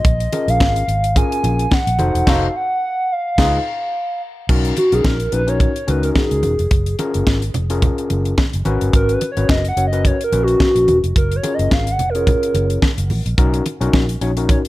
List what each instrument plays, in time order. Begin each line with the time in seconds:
Already playing: soft synth lead D#5
0.05 fingered electric bass A#1, kick, closed hi-hat, muted conga
0.20 closed hi-hat
0.32 tine electric piano C#4 F4 G#4 A#4, closed hi-hat, muted conga
0.48 fingered electric bass A#1, soft synth lead F5, closed hi-hat
0.60 kick, snare, high conga
0.76 closed hi-hat
0.88 fingered electric bass G#1, closed hi-hat
1.04 closed hi-hat
1.16 tine electric piano C#4 F4 G#4 A#4, soft synth lead G#5, kick, closed hi-hat, muted conga
1.32 closed hi-hat
1.44 fingered electric bass A#1, closed hi-hat, muted conga
1.59 closed hi-hat
1.71 soft synth lead F#5, kick, snare, high conga
1.87 fingered electric bass A#1, closed hi-hat
1.99 fingered electric bass F1, tine electric piano D#4 F#4 A4 C5, closed hi-hat, high conga
2.15 fingered electric bass E1, closed hi-hat
2.26 fingered electric bass F1, tine electric piano D#4 F#4 A4 C5, soft synth lead F5, kick, snare, crash
2.56 soft synth lead F#5
3.12 soft synth lead F5
3.38 fingered electric bass C#2, tine electric piano D#4 F4 G#4 B4, kick, snare, crash
4.49 fingered electric bass B1, tine electric piano C#4 D#4 F#4 A#4, kick, crash, muted conga
4.65 closed hi-hat
4.77 soft synth lead F#4, closed hi-hat, muted conga
4.92 fingered electric bass B1, tine electric piano C#4 D#4 F#4 A#4, soft synth lead G#4, closed hi-hat
5.05 fingered electric bass A#1, soft synth lead A#4, kick, snare, high conga
5.20 closed hi-hat
5.32 fingered electric bass A#1, tine electric piano C#4 D#4 F#4 A#4, soft synth lead B4, closed hi-hat
5.47 tine electric piano C#4 D#4 F#4 A#4, soft synth lead C#5, closed hi-hat
5.60 kick, closed hi-hat, muted conga
5.76 closed hi-hat
5.87 fingered electric bass C#2, tine electric piano C#4 D#4 F#4 A#4, soft synth lead B4, closed hi-hat, muted conga
6.03 soft synth lead A#4, closed hi-hat
6.15 soft synth lead G#4, kick, snare, high conga
6.31 fingered electric bass C#2, closed hi-hat
6.43 fingered electric bass E1, closed hi-hat, high conga
6.59 fingered electric bass F1, closed hi-hat
6.71 fingered electric bass F#1, kick, closed hi-hat, muted conga
6.86 closed hi-hat
6.99 tine electric piano C#4 F4 G#4 A#4, closed hi-hat, muted conga
7.14 fingered electric bass F#1, closed hi-hat
7.27 fingered electric bass G#1, kick, snare, high conga
7.42 closed hi-hat
7.54 fingered electric bass F1, closed hi-hat, low conga
7.70 tine electric piano C#4 F4 G#4 A#4, closed hi-hat
7.82 kick, closed hi-hat, muted conga, low conga
7.98 closed hi-hat
8.10 fingered electric bass F#1, closed hi-hat, muted conga
8.25 closed hi-hat
8.38 kick, snare, high conga
8.53 fingered electric bass F#1, closed hi-hat
8.65 fingered electric bass G#1, tine electric piano C#4 F#4 A#4 B4, closed hi-hat, high conga
8.81 fingered electric bass G1, closed hi-hat
8.93 fingered electric bass G#1, soft synth lead A#4, kick, closed hi-hat
9.09 soft synth lead B4, closed hi-hat
9.21 closed hi-hat, muted conga
9.32 soft synth lead C#5
9.37 fingered electric bass G#1, tine electric piano C#4 F#4 A#4 B4, closed hi-hat
9.49 fingered electric bass F#1, soft synth lead D#5, kick, snare, high conga
9.65 soft synth lead F#5, closed hi-hat
9.77 fingered electric bass F#1, tine electric piano C#4 F#4 A#4 C#5, closed hi-hat
9.87 soft synth lead D#5
9.92 tine electric piano C#4 F#4 A#4 B4, closed hi-hat
10.05 soft synth lead C#5, kick, closed hi-hat, muted conga
10.21 soft synth lead A#4, closed hi-hat
10.32 fingered electric bass A#1, tine electric piano C#4 F#4 A#4 B4, closed hi-hat, muted conga
10.43 soft synth lead F#4
10.48 closed hi-hat
10.60 kick, snare, high conga
10.75 fingered electric bass A#1, closed hi-hat
10.88 fingered electric bass E1, closed hi-hat, high conga
11.04 fingered electric bass F1, closed hi-hat
11.16 fingered electric bass F#1, soft synth lead A#4, kick, closed hi-hat, muted conga
11.32 closed hi-hat
11.36 soft synth lead C#5
11.43 tine electric piano C#4 F4 G#4 A#4, closed hi-hat, muted conga
11.54 soft synth lead D#5
11.59 fingered electric bass F#1, closed hi-hat
11.71 fingered electric bass G#1, soft synth lead F5, kick, snare, high conga
11.87 closed hi-hat
11.91 soft synth lead F#5
11.99 fingered electric bass F1, closed hi-hat, low conga
12.09 soft synth lead A#4
12.15 tine electric piano C#4 F4 G#4 C#5, closed hi-hat
12.27 kick, closed hi-hat, muted conga, low conga
12.43 closed hi-hat
12.54 fingered electric bass F#1, closed hi-hat, muted conga
12.70 closed hi-hat
12.82 kick, snare, high conga
12.98 fingered electric bass F#1, closed hi-hat
13.10 fingered electric bass A1, open hi-hat, high conga
13.26 fingered electric bass A#1, closed hi-hat
13.38 fingered electric bass B1, tine electric piano C#4 D#4 F#4 A#4, kick, closed hi-hat, muted conga
13.54 closed hi-hat
13.66 closed hi-hat, muted conga
13.81 fingered electric bass B1, tine electric piano C#4 D#4 F#4 A#4, closed hi-hat
13.93 fingered electric bass A#1, kick, snare, high conga
14.09 closed hi-hat
14.21 fingered electric bass A#1, tine electric piano C#4 D#4 F#4 C#5, closed hi-hat
14.37 tine electric piano C#4 D#4 F#4 A#4, closed hi-hat
14.49 soft synth lead C#5, kick, closed hi-hat, muted conga
14.65 closed hi-hat